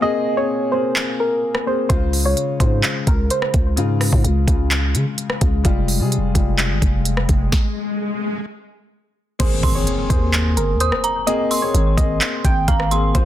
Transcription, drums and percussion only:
0.96 clap loud
1.55 cross-stick medium
1.90 kick loud
1.90 closed hi-hat medium
2.13 open hi-hat medium
2.37 closed hi-hat medium
2.60 kick loud
2.60 closed hi-hat medium
2.83 clap loud
2.83 closed hi-hat medium
3.07 kick loud
3.07 closed hi-hat medium
3.30 closed hi-hat loud
3.42 cross-stick medium
3.54 kick medium
3.54 closed hi-hat medium
3.77 closed hi-hat medium
4.01 cross-stick medium
4.01 open hi-hat medium
4.13 kick medium
4.25 closed hi-hat medium
4.48 kick loud
4.48 closed hi-hat loud
4.71 clap loud
4.71 closed hi-hat medium
4.95 closed hi-hat medium
5.18 closed hi-hat loud
5.30 cross-stick medium
5.41 kick medium
5.41 closed hi-hat medium
5.65 kick loud
5.65 closed hi-hat medium
5.88 open hi-hat medium
6.12 closed hi-hat medium
6.35 kick loud
6.35 closed hi-hat loud
6.59 clap loud
6.59 closed hi-hat medium
6.82 kick loud
6.82 closed hi-hat medium
7.05 closed hi-hat loud
7.17 cross-stick medium
7.29 kick medium
7.29 closed hi-hat medium
7.52 kick loud
7.52 snare loud
9.40 kick loud
9.40 closed hi-hat medium
9.40 crash loud
9.63 kick loud
9.63 open hi-hat medium
9.87 closed hi-hat medium
10.10 kick loud
10.10 closed hi-hat medium
10.33 clap loud
10.33 closed hi-hat medium
10.57 closed hi-hat medium
10.80 closed hi-hat medium
10.92 cross-stick medium
11.04 closed hi-hat medium
11.27 closed hi-hat medium
11.51 open hi-hat medium
11.75 closed hi-hat medium
11.98 kick loud
11.98 closed hi-hat loud
12.21 clap loud
12.21 closed hi-hat medium
12.45 kick loud
12.45 closed hi-hat medium
12.68 kick loud
12.68 closed hi-hat loud
12.80 cross-stick medium
12.91 closed hi-hat medium
13.15 kick loud
13.15 closed hi-hat medium

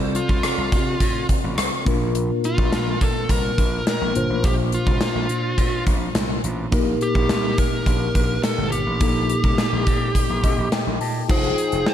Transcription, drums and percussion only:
0.15 closed hi-hat medium
0.29 kick medium
0.43 cross-stick loud
0.43 closed hi-hat medium
0.72 kick medium
0.72 closed hi-hat medium
1.00 kick medium
1.00 closed hi-hat medium
1.29 kick medium
1.29 closed hi-hat medium
1.58 cross-stick loud
1.58 closed hi-hat loud
1.86 kick loud
1.86 closed hi-hat medium
2.15 closed hi-hat medium
2.44 closed hi-hat medium
2.58 kick medium
2.72 snare loud
2.72 closed hi-hat medium
3.01 kick medium
3.01 closed hi-hat medium
3.29 kick medium
3.29 closed hi-hat medium
3.58 kick medium
3.58 closed hi-hat medium
3.87 snare loud
3.87 closed hi-hat loud
4.15 closed hi-hat medium
4.44 kick loud
4.44 closed hi-hat medium
4.72 closed hi-hat medium
4.87 kick medium
5.01 snare loud
5.01 closed hi-hat medium
5.29 closed hi-hat medium
5.58 kick medium
5.58 closed hi-hat medium
5.87 kick medium
5.87 closed hi-hat medium
6.15 snare loud
6.15 closed hi-hat loud
6.44 closed hi-hat medium
6.72 kick loud
6.72 closed hi-hat medium
7.01 closed hi-hat medium
7.15 kick medium
7.29 snare loud
7.29 closed hi-hat medium
7.58 kick medium
7.58 closed hi-hat medium
7.86 kick medium
7.86 closed hi-hat medium
8.15 kick medium
8.15 closed hi-hat medium
8.43 snare loud
8.43 closed hi-hat loud
8.72 closed hi-hat medium
9.00 kick loud
9.00 closed hi-hat medium
9.29 closed hi-hat medium
9.44 kick medium
9.58 snare loud
9.58 closed hi-hat medium
9.87 kick medium
9.87 closed hi-hat medium
10.15 kick medium
10.15 closed hi-hat medium
10.44 kick medium
10.44 closed hi-hat medium
10.72 snare loud
10.72 closed hi-hat loud
11.01 open hi-hat medium
11.29 kick loud
11.29 crash medium
11.44 closed hi-hat medium
11.58 closed hi-hat medium
11.72 closed hi-hat medium
11.87 snare loud

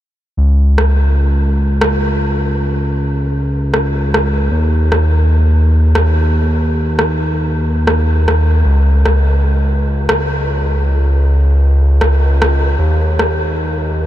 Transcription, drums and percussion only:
0.78 cross-stick medium
1.81 cross-stick medium
3.74 cross-stick medium
4.14 cross-stick medium
4.92 cross-stick medium
5.95 cross-stick medium
6.99 cross-stick medium
7.87 cross-stick medium
8.28 cross-stick medium
9.06 cross-stick medium
10.09 cross-stick medium
12.01 cross-stick medium
12.42 cross-stick medium
13.19 cross-stick medium

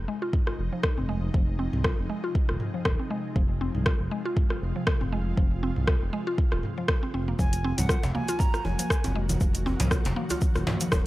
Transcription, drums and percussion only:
0.33 kick loud
0.33 mid tom medium
0.47 cross-stick medium
0.83 kick loud
0.83 cross-stick loud
0.97 mid tom medium
1.34 kick loud
1.73 mid tom medium
1.84 kick loud
1.84 cross-stick loud
2.35 kick loud
2.49 cross-stick medium
2.60 mid tom medium
2.85 kick loud
2.85 cross-stick loud
3.36 kick loud
3.75 mid tom medium
3.86 kick loud
3.86 cross-stick loud
4.36 kick loud
4.36 mid tom medium
4.50 cross-stick medium
4.87 kick loud
4.87 cross-stick loud
5.01 mid tom medium
5.37 kick loud
5.76 mid tom medium
5.87 kick loud
5.87 cross-stick loud
6.38 kick loud
6.52 cross-stick medium
6.63 mid tom medium
6.88 kick loud
6.88 cross-stick loud
7.39 kick loud
7.39 muted conga soft
7.39 djembe tone medium
7.39 shaker medium
7.53 closed hi-hat soft
7.53 shaker soft
7.78 closed hi-hat medium
7.78 mid tom medium
7.78 muted conga soft
7.78 djembe tone medium
7.78 high conga medium
7.78 shaker medium
7.89 kick loud
7.89 cross-stick loud
7.89 shaker medium
8.03 djembe slap medium
8.03 djembe tone medium
8.03 low conga medium
8.03 shaker soft
8.15 high conga medium
8.15 low conga medium
8.28 closed hi-hat medium
8.28 muted conga medium
8.28 shaker medium
8.39 kick loud
8.39 mid tom medium
8.39 djembe tone medium
8.39 shaker medium
8.54 cross-stick medium
8.54 shaker soft
8.65 muted conga soft
8.65 djembe tone medium
8.65 high conga medium
8.79 closed hi-hat soft
8.79 shaker medium
8.90 kick loud
8.90 cross-stick loud
8.90 shaker medium
9.04 closed hi-hat soft
9.04 mid tom medium
9.04 muted conga soft
9.04 djembe tone medium
9.04 shaker soft
9.29 closed hi-hat medium
9.29 djembe tone medium
9.29 high conga medium
9.29 low conga medium
9.29 shaker medium
9.41 kick loud
9.41 muted conga soft
9.41 shaker medium
9.54 closed hi-hat soft
9.54 shaker soft
9.66 djembe tone medium
9.80 closed hi-hat soft
9.80 mid tom medium
9.80 djembe slap medium
9.80 muted conga soft
9.80 high conga medium
9.80 shaker medium
9.91 kick loud
9.91 cross-stick medium
9.91 djembe tone medium
9.91 shaker medium
10.05 closed hi-hat soft
10.05 djembe slap loud
10.05 low conga medium
10.05 shaker soft
10.16 high conga medium
10.30 closed hi-hat medium
10.30 muted conga medium
10.30 djembe tone medium
10.30 shaker medium
10.41 kick loud
10.41 high conga medium
10.41 shaker medium
10.55 cross-stick medium
10.55 djembe tone medium
10.55 shaker soft
10.67 mid tom medium
10.67 djembe slap loud
10.67 muted conga soft
10.67 high conga medium
10.67 low conga medium
10.80 closed hi-hat soft
10.80 shaker medium
10.92 kick loud
10.92 cross-stick loud
10.92 djembe tone medium
10.92 high conga medium
10.92 shaker medium

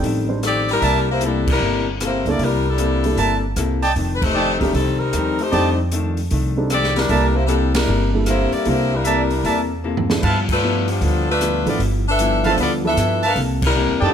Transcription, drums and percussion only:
0.04 open hi-hat soft
0.43 cross-stick medium
0.43 closed hi-hat soft
0.69 open hi-hat soft
0.82 open hi-hat soft
1.21 closed hi-hat medium
1.47 kick medium
1.47 crash medium
2.00 cross-stick medium
2.00 closed hi-hat medium
2.26 open hi-hat soft
2.39 open hi-hat soft
2.78 closed hi-hat soft
3.04 open hi-hat soft
3.17 open hi-hat soft
3.56 cross-stick medium
3.56 closed hi-hat medium
3.83 open hi-hat soft
3.96 open hi-hat soft
4.22 kick medium
4.22 crash medium
4.61 kick medium
4.61 open hi-hat soft
4.75 open hi-hat soft
5.13 cross-stick medium
5.13 closed hi-hat medium
5.39 open hi-hat soft
5.53 open hi-hat soft
5.92 closed hi-hat medium
6.17 open hi-hat soft
6.31 open hi-hat medium
6.70 cross-stick medium
6.70 closed hi-hat medium
6.84 snare soft
6.96 snare soft
6.96 open hi-hat soft
7.09 open hi-hat soft
7.48 closed hi-hat medium
7.75 snare medium
7.75 ride medium
8.26 cross-stick medium
8.26 closed hi-hat soft
8.52 open hi-hat soft
8.65 open hi-hat soft
9.05 closed hi-hat medium
9.30 open hi-hat soft
9.45 open hi-hat soft
9.97 floor tom medium
10.10 snare medium
10.23 kick medium
10.23 crash medium
10.49 kick medium
10.49 crash medium
10.88 open hi-hat soft
11.01 open hi-hat soft
11.41 cross-stick medium
11.41 closed hi-hat medium
11.67 open hi-hat soft
11.80 open hi-hat soft
12.19 closed hi-hat medium
12.44 open hi-hat soft
12.58 open hi-hat soft
12.97 cross-stick medium
12.97 closed hi-hat medium
13.23 open hi-hat soft
13.36 open hi-hat soft
13.62 kick medium
13.62 crash medium

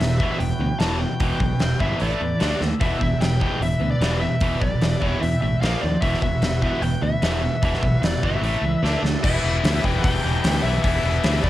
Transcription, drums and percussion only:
0.01 snare loud
0.01 open hi-hat medium
0.20 kick medium
0.40 open hi-hat soft
0.80 snare loud
0.80 open hi-hat soft
1.20 kick loud
1.20 open hi-hat soft
1.40 kick medium
1.60 snare loud
1.60 open hi-hat soft
1.80 kick medium
2.00 open hi-hat soft
2.40 snare loud
2.40 open hi-hat soft
2.61 snare medium
2.81 kick loud
2.81 open hi-hat soft
3.01 kick medium
3.21 snare loud
3.21 open hi-hat soft
3.41 kick medium
3.62 open hi-hat soft
4.02 snare loud
4.02 open hi-hat soft
4.41 kick loud
4.41 open hi-hat medium
4.62 kick medium
4.81 snare loud
4.81 open hi-hat soft
5.02 kick medium
5.23 open hi-hat soft
5.63 snare loud
5.63 open hi-hat soft
6.02 kick loud
6.02 open hi-hat soft
6.13 snare soft
6.22 kick medium
6.42 snare loud
6.42 open hi-hat soft
6.62 kick medium
6.82 open hi-hat soft
7.22 snare loud
7.22 open hi-hat medium
7.63 kick loud
7.63 open hi-hat medium
7.74 snare soft
7.83 kick medium
8.03 snare loud
8.03 open hi-hat medium
8.23 kick medium
8.44 open hi-hat soft
8.85 snare medium
9.05 snare medium
9.24 kick loud
9.24 crash loud
9.64 snare loud
9.64 open hi-hat medium
9.84 kick medium
10.04 kick loud
10.04 open hi-hat medium
10.44 snare loud
10.44 open hi-hat medium
10.84 kick loud
10.84 open hi-hat medium
11.24 snare loud
11.24 open hi-hat medium
11.44 kick medium

